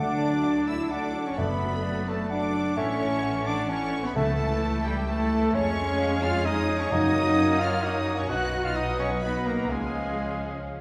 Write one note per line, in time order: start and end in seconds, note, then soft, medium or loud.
0.00 1.34 D2 medium
0.00 0.87 F#3 medium
0.00 0.14 A3 medium
0.00 0.87 A3 medium
0.00 0.63 D4 medium
0.00 0.69 D4 medium
0.00 0.87 D4 medium
0.00 0.86 A4 medium
0.00 0.69 D5 medium
0.00 0.19 F#5 medium
0.00 0.45 F#5 medium
0.00 0.64 D6 loud
0.44 0.90 D5 medium
0.68 0.92 E4 medium
0.68 0.91 E4 medium
0.68 0.90 E5 medium
0.68 0.91 E6 medium
0.90 1.37 F#3 medium
0.90 1.36 A3 medium
0.90 1.26 D4 medium
0.90 1.36 D4 medium
0.90 1.36 A4 medium
0.90 1.28 D5 medium
0.90 1.39 F#5 medium
0.90 1.26 D6 medium
1.26 1.38 C#4 medium
1.26 1.38 C#5 medium
1.26 1.39 C#6 medium
1.37 2.75 F#1 medium
1.37 2.04 F#2 medium
1.37 2.30 F#3 medium
1.37 2.29 A3 medium
1.37 1.54 A3 medium
1.37 2.08 B3 medium
1.37 2.10 B3 medium
1.37 2.07 B3 medium
1.37 2.29 D4 medium
1.37 2.29 A4 medium
1.37 2.10 B4 medium
1.37 1.59 D5 medium
1.37 1.84 E5 medium
1.37 2.08 B5 loud
1.83 2.29 D5 medium
2.08 2.18 A3 medium
2.08 2.32 A3 medium
2.08 2.31 A4 medium
2.08 2.32 A5 medium
2.30 2.76 F#3 medium
2.30 2.74 A3 medium
2.30 2.76 D4 medium
2.30 2.77 D4 medium
2.30 2.76 A4 medium
2.30 2.79 D5 medium
2.30 2.76 F#5 medium
2.30 2.76 D6 loud
2.75 4.15 A1 medium
2.75 3.68 E3 medium
2.75 3.67 A3 medium
2.75 2.93 A3 medium
2.75 3.44 C#4 medium
2.75 3.48 C#4 medium
2.75 3.45 C#4 medium
2.75 3.68 E4 medium
2.75 3.68 A4 medium
2.75 3.48 C#5 medium
2.75 3.22 E5 medium
2.75 2.99 E5 medium
2.75 3.46 C#6 loud
3.22 4.13 F#5 medium
3.45 3.68 D4 medium
3.45 3.69 D4 medium
3.45 3.71 D4 medium
3.45 3.71 D5 medium
3.45 3.69 D6 loud
3.68 4.14 E3 medium
3.68 4.14 A3 medium
3.68 4.03 C#4 medium
3.68 4.07 C#4 medium
3.68 4.14 E4 medium
3.68 4.14 A4 medium
3.68 4.05 C#5 medium
3.68 4.04 C#6 loud
4.03 4.15 B3 medium
4.03 4.16 B3 medium
4.03 4.15 B4 medium
4.03 4.16 B5 medium
4.15 5.51 C#2 medium
4.15 4.81 C#3 medium
4.15 5.05 E3 medium
4.15 5.05 A3 medium
4.15 4.83 A3 medium
4.15 4.84 A3 medium
4.15 4.32 A3 medium
4.15 4.84 A3 medium
4.15 5.06 E4 medium
4.15 5.05 A4 medium
4.15 4.83 A4 medium
4.15 5.51 E5 medium
4.15 4.37 E5 medium
4.15 4.83 A5 loud
4.83 4.94 G3 medium
4.83 4.93 G3 medium
4.83 4.96 G3 medium
4.83 5.07 G4 medium
4.83 5.08 G5 loud
5.06 5.53 E3 medium
5.06 5.52 A3 medium
5.06 5.53 A3 medium
5.06 5.56 A3 medium
5.06 5.53 E4 medium
5.06 5.56 A4 medium
5.06 5.54 A4 medium
5.06 5.54 A5 loud
5.52 6.89 F2 medium
5.52 6.91 G#3 medium
5.52 6.88 G#3 medium
5.52 6.22 C#4 loud
5.52 6.21 C#4 medium
5.52 6.90 C#4 medium
5.52 6.91 C#4 medium
5.52 6.24 C#4 medium
5.52 6.89 G#4 medium
5.52 6.00 C#5 medium
5.52 8.26 C#5 loud
5.52 6.22 C#5 loud
5.52 6.22 C#6 loud
5.99 6.45 F5 medium
6.21 6.31 F4 medium
6.21 6.45 F4 medium
6.21 6.46 F4 medium
6.21 6.47 F5 loud
6.21 6.46 F6 loud
6.44 6.78 D#4 medium
6.44 6.82 D#4 medium
6.44 6.79 D#4 medium
6.44 6.78 G#4 medium
6.44 6.80 D#5 medium
6.44 6.79 D#6 loud
6.80 6.93 C#4 medium
6.80 6.85 C#4 medium
6.80 6.91 C#4 medium
6.80 6.93 C#5 medium
6.80 6.91 C#6 loud
6.91 7.56 F#2 medium
6.91 8.27 F#2 medium
6.91 8.27 F#3 medium
6.91 8.27 A#3 medium
6.91 8.26 C#4 medium
6.91 7.59 D#4 loud
6.91 7.62 D#4 loud
6.91 7.59 D#4 medium
6.91 8.27 F#4 medium
6.91 8.27 A#4 medium
6.91 7.55 D#5 loud
6.91 7.61 D#5 loud
6.91 7.60 D#6 loud
7.60 7.83 F4 medium
7.60 7.85 F4 loud
7.60 7.84 F4 medium
7.60 7.85 F5 medium
7.60 7.84 F6 loud
7.83 8.17 D#4 medium
7.83 8.18 D#4 medium
7.83 8.26 C#5 medium
7.83 8.19 D#5 medium
7.83 8.18 D#6 loud
8.17 8.29 C#4 medium
8.17 8.31 C#4 medium
8.17 8.29 C#5 medium
8.17 8.30 C#6 medium
8.29 9.66 B1 medium
8.29 8.73 F#3 medium
8.29 9.72 B3 medium
8.29 8.72 D#4 medium
8.29 8.66 F#4 loud
8.29 8.64 F#4 medium
8.29 8.64 F#4 loud
8.29 8.73 F#4 medium
8.29 8.73 B4 medium
8.29 8.77 D#5 medium
8.29 9.71 D#5 medium
8.29 8.66 F#5 medium
8.29 8.65 F#6 loud
8.64 8.76 F4 medium
8.64 8.77 F5 medium
8.64 8.76 F6 loud
8.75 9.22 F#3 medium
8.75 9.22 D#4 medium
8.75 8.99 D#4 medium
8.75 9.20 F#4 medium
8.75 9.20 B4 medium
8.75 8.99 D#5 loud
8.75 9.24 F#5 medium
8.75 8.99 D#6 loud
8.99 9.09 C#4 medium
8.99 9.10 C#4 medium
8.99 9.08 C#4 medium
8.99 9.10 C#5 medium
8.99 9.23 C#6 medium
9.21 9.69 F#3 medium
9.21 9.48 B3 medium
9.21 9.46 B3 medium
9.21 9.34 B3 medium
9.21 9.69 D#4 medium
9.21 9.68 F#4 medium
9.21 9.69 B4 medium
9.21 9.48 B4 medium
9.21 9.70 D#5 medium
9.21 9.45 B5 medium
9.46 9.70 A#3 medium
9.46 9.69 A#3 medium
9.46 9.73 A#3 medium
9.46 9.71 A#4 medium
9.46 9.69 A#5 medium
9.69 10.81 C#2 medium
9.69 10.81 F3 medium
9.69 10.65 G#3 medium
9.69 10.81 G#3 medium
9.69 10.66 G#3 medium
9.69 10.81 C#4 medium
9.69 10.81 G#4 medium
9.69 10.65 G#4 medium
9.69 10.81 F5 medium
9.69 10.65 G#5 medium